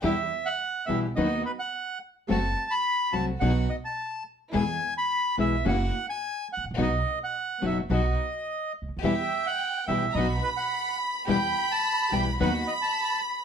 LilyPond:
<<
  \new Staff \with { instrumentName = "Violin section" } { \time 4/4 \key e \minor \tempo 4 = 107 r1 | r1 | r1 | r1 |
g''4.~ g''16. ais''32 b''2 | b''2 b''2 | }
  \new Staff \with { instrumentName = "Bandoneon" } { \time 4/4 \key e \minor e''8. fis''8. e''8 dis''8 b'16 fis''8. r8 | a''8. b''8. a''8 fis''8 dis''16 a''8. r8 | gis''8. b''8. e''8 fis''8. gis''8. fis''8 | dis''8. fis''8. e''8 dis''4. r8 |
e''8. fis''8. e''8 dis''8 b'16 fis''8. r8 | g''8. a''8. g''8 fis''8 dis''16 a''8. r8 | }
  \new Staff \with { instrumentName = "String section" } { \time 4/4 \key e \minor <b e' g'>8 r4 <b e' g'>8 <b dis' fis'>8 r4. | <a c' fis'>8 r4 <a c' fis'>8 <b dis' fis'>8 r4. | <b e' gis'>8 r4 <b e' gis'>8 <ais e' fis'>8 r4. | <b dis' fis'>8 r4 <b dis' fis'>8 <b dis' fis'>8 r4. |
<b e' g'>8 r4 <b e' g'>8 <b dis' fis'>8 r4. | <b e' g'>8 r4 <b e' g'>8 <b dis' fis'>8 r4. | }
  \new Staff \with { instrumentName = "Nylon-string guitar" } { \time 4/4 \key e \minor <b, e g b e'>8 r4 <b, e g b e'>8 <dis fis b dis' b'>8 r4. | <fis a c' fis'>8 r4 <fis a c' fis'>8 <b, fis b dis' fis'>8 r4. | <b, e gis b e'>8 r4 <b, e gis b e'>8 <cis e ais cis' fis'>8 r4. | <b, fis b dis' fis'>8 r4 <b, fis b dis' fis'>8 <b, fis b dis' fis'>8 r4. |
<b, e g b e'>8 r4 <b, e g b e'>8 <b, fis b dis' fis'>8 r4. | <b, e g b e'>8 r4 <b, e g b e'>8 <dis fis b dis' b'>8 r4. | }
  \new Staff \with { instrumentName = "Upright bass" } { \clef bass \time 4/4 \key e \minor e,16. r4 r32 b,,16. r32 dis,16. r4. r32 | fis,,16. r4 r32 c,16. r32 b,,16. r4. r32 | e,16. r4 r32 b,,16. r32 fis,,16. r4 r16 gis,,32 a,,32 ais,,32 | b,,16. r4 r32 fis,,16. r32 b,,16. r4 r16 cis,32 d,32 dis,32 |
e,16. r4 r32 b,,16. r32 b,,16. r4. r32 | e,16. r4 r32 b,,16. r32 dis,16. r4. r32 | }
>>